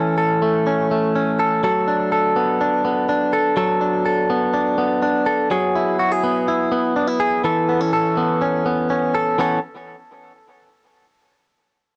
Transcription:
0.00 1.63 E3 medium
0.00 0.42 A3 medium
0.00 0.65 C#4 medium
0.00 0.17 A4 medium
0.18 1.39 A4 medium
0.42 0.91 A3 medium
0.67 1.14 C#4 medium
0.91 2.36 A3 medium
1.16 1.69 C#4 medium
1.39 1.64 A4 medium
1.64 3.56 F#3 medium
1.64 2.11 A4 medium
1.88 2.60 D4 medium
2.12 3.32 A4 medium
2.36 2.85 B3 medium
2.61 3.08 D4 medium
2.85 4.29 B3 medium
3.09 3.80 D4 medium
3.33 3.56 A4 medium
3.57 5.50 F#3 medium
3.57 4.04 A4 medium
3.81 4.52 D4 medium
4.06 5.25 A4 medium
4.30 4.77 B3 medium
4.53 5.01 D4 medium
4.78 6.23 B3 medium
5.02 5.56 D4 medium
5.26 5.51 A4 medium
5.51 7.44 F#3 loud
5.51 5.99 G#4 medium
5.75 6.48 E4 medium
5.99 6.11 F#4 medium
6.12 7.19 G#4 medium
6.23 6.71 B3 medium
6.48 6.96 E4 medium
6.72 7.69 B3 medium
6.96 7.08 D4 medium
7.08 7.49 E4 medium
7.20 7.44 G#4 medium
7.44 9.38 E3 medium
7.44 7.93 A4 medium
7.69 7.80 B3 medium
7.80 8.40 C#4 medium
7.93 9.14 A4 medium
8.17 8.65 B3 medium
8.41 8.90 C#4 medium
8.66 9.39 B3 medium
8.90 9.40 C#4 medium
9.15 9.40 A4 medium
9.38 9.58 E3 medium
9.38 9.58 B3 medium
9.38 9.59 C#4 loud
9.38 9.59 A4 loud

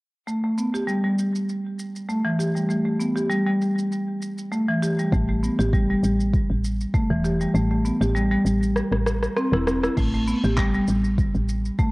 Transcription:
0.27 0.42 A3 medium
0.27 shaker soft
0.44 0.56 A3 medium
0.58 0.67 B3 medium
0.58 shaker medium
0.74 0.87 G4 medium
0.74 shaker soft
0.87 1.03 G3 medium
0.87 shaker soft
1.04 1.17 G3 medium
1.19 shaker medium
1.36 shaker soft
1.49 shaker soft
1.79 shaker medium
1.96 shaker soft
2.09 2.24 A3 medium
2.09 shaker soft
2.25 2.38 E3 medium
2.39 2.54 G4 medium
2.39 shaker medium
2.55 2.68 G3 medium
2.55 shaker soft
2.69 2.84 A3 medium
2.69 shaker soft
2.85 2.98 A3 medium
3.00 3.09 B3 medium
3.00 shaker medium
3.16 3.29 G4 medium
3.16 shaker soft
3.30 3.45 G3 medium
3.30 shaker soft
3.46 3.60 G3 medium
3.62 shaker medium
3.78 shaker soft
3.92 shaker soft
4.22 shaker medium
4.38 shaker soft
4.52 4.67 A3 medium
4.52 shaker soft
4.68 4.81 E3 medium
4.82 4.97 G4 medium
4.82 shaker medium
4.99 5.11 G3 medium
4.99 shaker soft
5.12 5.49 A1 loud
5.12 5.27 A3 medium
5.12 kick loud
5.12 shaker soft
5.29 5.41 A3 medium
5.43 5.52 B3 medium
5.43 shaker medium
5.59 5.95 A1 medium
5.59 5.71 G4 medium
5.59 shaker soft
5.73 5.88 G3 loud
5.73 kick loud
5.73 shaker soft
5.90 6.03 G3 medium
6.03 6.40 A1 medium
6.03 shaker medium
6.20 shaker soft
6.33 kick loud
6.33 shaker soft
6.50 6.86 A1 medium
6.64 shaker medium
6.81 shaker soft
6.94 7.10 A3 medium
6.94 kick loud
6.94 shaker soft
7.10 7.46 E1 loud
7.10 7.23 E3 medium
7.24 7.39 G4 medium
7.24 shaker medium
7.41 7.53 G3 medium
7.41 shaker soft
7.54 7.91 A1 loud
7.54 7.69 A3 medium
7.54 shaker soft
7.71 7.84 A3 medium
7.85 7.94 B3 medium
7.85 shaker medium
8.01 8.37 A1 loud
8.01 8.14 G4 medium
8.01 shaker soft
8.15 8.30 G3 loud
8.15 shaker soft
8.31 8.45 G3 medium
8.45 8.82 A1 medium
8.45 shaker medium
8.63 shaker soft
8.76 cross-stick medium
8.76 shaker soft
8.92 9.28 A1 medium
8.92 cross-stick soft
9.07 cross-stick medium
9.07 shaker medium
9.23 cross-stick medium
9.23 shaker soft
9.37 9.51 C4 medium
9.37 cross-stick medium
9.37 shaker soft
9.52 9.88 E1 loud
9.52 9.66 E4 medium
9.52 cross-stick medium
9.67 9.76 C4 medium
9.67 cross-stick medium
9.67 shaker medium
9.83 9.96 E4 medium
9.83 cross-stick medium
9.83 shaker soft
9.97 10.34 A1 medium
9.97 10.12 A3 medium
9.97 kick loud
9.97 crash medium
9.97 shaker soft
10.14 10.26 A3 medium
10.14 shaker soft
10.27 10.37 B3 medium
10.27 shaker medium
10.44 10.80 A1 loud
10.44 10.57 G4 medium
10.44 shaker soft
10.57 10.73 G3 loud
10.57 kick loud
10.57 clap medium
10.57 shaker soft
10.74 10.87 G3 medium
10.74 shaker soft
10.88 11.25 A1 medium
10.88 shaker medium
11.04 shaker soft
11.18 kick loud
11.18 shaker soft
11.34 11.70 A1 medium
11.34 shaker soft
11.49 shaker medium
11.65 shaker soft
11.79 11.92 A3 medium
11.79 kick loud
11.79 shaker soft

